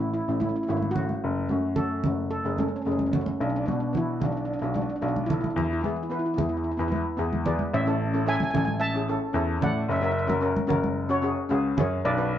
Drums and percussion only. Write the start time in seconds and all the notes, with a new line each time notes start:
0.41 high conga
0.82 high conga
0.96 low conga
1.09 high conga
1.49 high conga
1.76 low conga
2.04 high conga, low conga
2.58 high conga
2.99 high conga
3.13 low conga
3.26 high conga
3.68 high conga
3.95 low conga
4.22 high conga, low conga
4.76 high conga
5.16 high conga
5.30 low conga
5.44 high conga
5.58 low conga
5.84 high conga
6.38 high conga, low conga
6.92 high conga
7.33 high conga
7.46 low conga
7.59 high conga
8.40 high conga
8.55 low conga
8.68 high conga
9.62 low conga
10.30 high conga
10.57 high conga
10.70 low conga
10.84 high conga
11.78 low conga